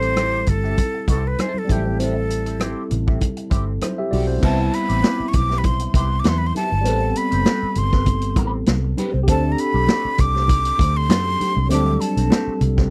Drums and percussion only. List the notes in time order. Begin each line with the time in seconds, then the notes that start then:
0.02 closed hi-hat
0.16 cross-stick, closed hi-hat, high conga
0.46 kick, closed hi-hat, low conga
0.64 cross-stick
0.77 kick, closed hi-hat, muted conga
1.08 kick, closed hi-hat, muted conga
1.38 cross-stick, closed hi-hat, high conga
1.54 high conga
1.69 kick, closed hi-hat, high conga
2.00 closed hi-hat
2.30 closed hi-hat
2.46 closed hi-hat
2.60 cross-stick, closed hi-hat, high conga
2.91 closed hi-hat, low conga
3.08 kick
3.21 kick, closed hi-hat, muted conga, low conga
3.37 closed hi-hat
3.51 kick, closed hi-hat, muted conga
3.81 cross-stick, closed hi-hat, high conga
4.13 open hi-hat, high conga
4.43 kick, crash, muted conga
4.73 closed hi-hat
4.89 closed hi-hat
5.02 snare, closed hi-hat, high conga
5.33 kick, closed hi-hat, low conga
5.51 snare
5.64 kick, closed hi-hat, muted conga, low conga
5.79 closed hi-hat
5.94 kick, closed hi-hat, muted conga
6.24 snare, closed hi-hat, high conga
6.55 closed hi-hat, high conga
6.85 closed hi-hat
7.15 closed hi-hat
7.32 closed hi-hat
7.45 snare, closed hi-hat, high conga
7.75 closed hi-hat, low conga
7.92 kick, snare
8.06 kick, closed hi-hat, muted conga, low conga
8.21 closed hi-hat
8.36 kick, closed hi-hat, muted conga
8.66 snare, closed hi-hat, high conga
8.97 closed hi-hat, high conga
9.28 kick, closed hi-hat
9.58 closed hi-hat
9.87 snare, closed hi-hat, high conga
10.18 kick, closed hi-hat, low conga
10.36 snare
10.48 kick, closed hi-hat, muted conga, low conga
10.65 closed hi-hat
10.78 kick, closed hi-hat, muted conga
11.10 snare, closed hi-hat, high conga
11.41 closed hi-hat, high conga
11.70 closed hi-hat, muted conga
12.01 closed hi-hat
12.17 closed hi-hat
12.30 snare, closed hi-hat, high conga
12.61 closed hi-hat, low conga
12.78 kick, snare